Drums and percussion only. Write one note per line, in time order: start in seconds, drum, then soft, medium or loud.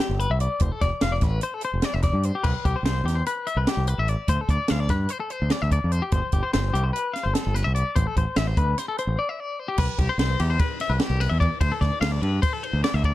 0.20 closed hi-hat medium
0.40 closed hi-hat medium
0.60 kick loud
0.60 closed hi-hat loud
0.81 kick medium
0.81 snare soft
0.81 closed hi-hat medium
1.01 snare loud
1.01 closed hi-hat loud
1.21 kick medium
1.21 snare soft
1.21 closed hi-hat medium
1.41 closed hi-hat loud
1.61 closed hi-hat medium
1.82 snare loud
1.82 closed hi-hat medium
2.02 kick medium
2.02 snare soft
2.02 closed hi-hat medium
2.23 closed hi-hat medium
2.44 kick loud
2.44 crash loud
2.65 kick medium
2.65 closed hi-hat medium
2.85 snare loud
2.85 closed hi-hat medium
3.08 snare soft
3.08 closed hi-hat medium
3.26 closed hi-hat medium
3.47 closed hi-hat medium
3.67 snare loud
3.67 closed hi-hat loud
3.87 closed hi-hat medium
4.08 closed hi-hat medium
4.28 kick loud
4.28 closed hi-hat loud
4.49 kick medium
4.49 closed hi-hat medium
4.68 snare loud
4.68 closed hi-hat loud
4.89 kick medium
4.89 snare soft
4.89 closed hi-hat medium
5.09 closed hi-hat loud
5.30 closed hi-hat medium
5.50 snare loud
5.50 closed hi-hat medium
5.71 kick medium
5.71 closed hi-hat medium
5.92 closed hi-hat medium
6.12 kick loud
6.12 closed hi-hat loud
6.32 kick medium
6.32 closed hi-hat medium
6.53 snare loud
6.53 closed hi-hat loud
6.75 closed hi-hat medium
6.96 closed hi-hat loud
7.16 snare soft
7.16 closed hi-hat medium
7.35 snare loud
7.35 closed hi-hat medium
7.56 snare soft
7.56 closed hi-hat medium
7.76 closed hi-hat medium
7.96 kick loud
7.96 closed hi-hat loud
8.17 kick medium
8.17 closed hi-hat medium
8.36 snare loud
8.36 closed hi-hat loud
8.57 kick medium
8.57 closed hi-hat medium
8.78 snare soft
8.78 closed hi-hat loud
8.98 closed hi-hat medium
9.78 kick loud
9.78 crash loud
9.99 kick medium
9.99 snare soft
9.99 ride medium
10.19 snare loud
10.19 ride loud
10.40 ride medium
10.59 kick loud
10.59 snare soft
10.59 ride loud
10.80 snare soft
10.80 ride medium
11.00 snare loud
11.00 ride loud
11.21 snare soft
11.21 ride medium
11.41 kick medium
11.41 ride medium
11.61 kick loud
11.61 ride loud
11.82 kick medium
11.82 snare soft
11.82 ride medium
12.02 snare loud
12.02 ride loud
12.23 ride medium
12.43 kick loud
12.43 ride loud
12.64 ride medium
12.84 snare loud
12.84 ride medium
13.04 kick medium
13.04 ride medium